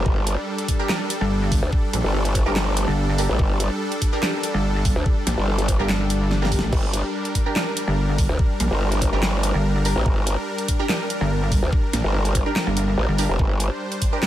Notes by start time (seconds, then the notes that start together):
Already playing: G3 D4
0.06 G1 A4, kick
0.27 closed hi-hat
0.58 closed hi-hat
0.68 kick, closed hi-hat
0.79 D4 G4 A#4
0.89 D4 G4 A#4, snare, clap
1.10 closed hi-hat
1.21 G1
1.52 kick, open hi-hat
1.63 D2
1.73 kick
1.93 A#1, closed hi-hat
2.04 G1
2.25 closed hi-hat
2.35 kick, closed hi-hat
2.46 G1 D4 G4 A#4
2.56 snare, clap
2.77 closed hi-hat
2.88 G1
3.18 D4 G4 A#4, open hi-hat
3.29 A1
3.39 G1, kick
3.60 closed hi-hat
3.92 closed hi-hat
4.02 kick, closed hi-hat
4.13 D4 G4 A#4
4.23 D4 G4 A#4, snare, clap
4.43 closed hi-hat
4.54 G1
4.85 kick, open hi-hat
4.96 D2
5.06 kick
5.27 A#1, snare, closed hi-hat
5.38 G1
5.58 closed hi-hat
5.68 kick, closed hi-hat
5.79 G1 D4 G4 A#4
5.89 snare, clap
6.10 closed hi-hat
6.31 snare
6.42 D4 G4 A#4, snare
6.52 kick, open hi-hat
6.59 A1, snare
6.73 G1 A#4, kick, crash
6.93 closed hi-hat
7.25 closed hi-hat
7.35 kick, closed hi-hat
7.46 D4 G4 A#4
7.56 D4 G4 A#4, snare, clap
7.77 closed hi-hat
7.88 G1
8.18 kick, open hi-hat
8.29 D2
8.39 kick
8.60 A#1, closed hi-hat
8.71 G1
8.92 closed hi-hat
9.02 kick, closed hi-hat
9.13 G1 D4 G4 A#4
9.23 snare, clap
9.43 closed hi-hat
9.54 G1
9.85 D4 G4 A#4, open hi-hat
9.96 A1
10.06 G1, kick
10.27 closed hi-hat
10.58 closed hi-hat
10.68 kick, closed hi-hat
10.79 D4 G4 A#4
10.89 D4 G4 A#4, snare, clap
11.10 closed hi-hat
11.21 G1
11.52 kick, open hi-hat
11.63 D2
11.73 kick
11.93 A#1, snare, closed hi-hat
12.04 G1
12.25 closed hi-hat
12.35 kick, closed hi-hat
12.46 D4 G4 A#4
12.56 snare, clap
12.67 G1
12.77 closed hi-hat
12.98 A1
13.08 G1
13.18 D4 G4 A#4, open hi-hat
13.29 F1
13.39 G1 C5, kick
13.60 closed hi-hat
13.92 closed hi-hat
14.02 kick, closed hi-hat
14.13 D4 G4 A#4
14.23 D4 G4 A#4, snare, clap